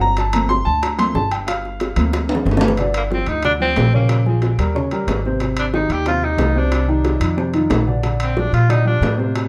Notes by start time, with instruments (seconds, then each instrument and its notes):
Already playing: upright bass G1, grand piano F#3 A#3 C4
0.01 grand piano A#5, high bongo
0.17 grand piano A5, high bongo, high timbale
0.33 grand piano F3 A3 A#3 C4 A#5, high timbale
0.49 grand piano C6, high bongo
0.65 upright bass D2, grand piano A5
0.82 grand piano A#5, high bongo, high timbale
0.98 grand piano F3 A3 A#3 C4 C6, high timbale
1.15 upright bass G1, grand piano A5, high bongo, low bongo
1.31 grand piano G5, high timbale
1.47 grand piano F5, high bongo, high timbale
1.65 high bongo
1.80 high bongo, high timbale
1.96 upright bass D2, grand piano F3 A3 A#3 C4, high bongo, high timbale
2.13 high bongo, high timbale
2.29 high timbale
2.35 low bongo
2.45 upright bass G1, low bongo
2.51 low timbale
2.57 low bongo, low timbale
2.68 low bongo
2.77 grand piano D3 D4 D5, high bongo, high timbale
2.94 tenor saxophone A#3, high timbale
3.10 grand piano F3 F4 G4, tenor saxophone C4, high bongo, low timbale
3.26 upright bass D2, tenor saxophone D#4, high bongo, high timbale
3.43 grand piano D3 D4 D5, tenor saxophone D4, high bongo, high timbale
3.60 grand piano F3 F4 G4, tenor saxophone C4, high bongo
3.76 upright bass A#1, high bongo, low bongo, high timbale, low timbale
3.93 grand piano C#3 C#4 C#5, tenor saxophone A#3, high bongo
4.09 high bongo, high timbale
4.26 grand piano F3 F4 G#4, high bongo
4.42 high bongo, high timbale, low timbale
4.58 upright bass D#2, grand piano G3 G4 A#4, high bongo, high timbale
4.75 grand piano C#3 C#4 C#5, high bongo
4.91 grand piano G3 G4 A#4, high timbale
5.07 upright bass G#1, high bongo, low bongo, high timbale, low timbale
5.25 grand piano C3 C4 C5, high bongo
5.40 grand piano C3 C4 C5, high bongo, high timbale
5.57 tenor saxophone D4, high timbale
5.73 grand piano D#3 D#4 G4, tenor saxophone D#4, high bongo, low timbale
5.89 upright bass D#2, tenor saxophone G4, high bongo, high timbale
6.06 grand piano C3 C4 C5, tenor saxophone F4, high bongo, high timbale
6.23 grand piano D#3 D#4 G4, tenor saxophone D#4, high bongo
6.38 upright bass C2, high bongo, low bongo, high timbale, low timbale
6.55 grand piano C3 C4 C5, tenor saxophone D4, high bongo
6.72 high bongo, high timbale
6.88 grand piano D#3 D#4 G4, high bongo
7.05 high bongo, high timbale, low timbale
7.20 upright bass F2, grand piano D#3 D#4 F4, high bongo, high timbale
7.37 grand piano C3 C4 C5, high bongo
7.54 grand piano D#3 D#4 F4, high timbale
7.70 upright bass A#1, high bongo, low bongo, high timbale, low timbale
7.87 grand piano D3 D4 D5, high bongo
8.03 grand piano D3 D4 D5, high bongo, high timbale
8.20 tenor saxophone C4, high timbale
8.37 grand piano F3 F4 G4, tenor saxophone D4, high bongo, low timbale
8.52 upright bass A#2, tenor saxophone F4, high bongo, high timbale
8.68 grand piano D3 D4 D5, tenor saxophone D#4, high bongo, high timbale
8.85 grand piano F3 F4 G4, tenor saxophone D4, high bongo
9.01 upright bass A2, high bongo, low bongo, high timbale, low timbale
9.18 grand piano C3 C4 C5, high bongo
9.36 high bongo, high timbale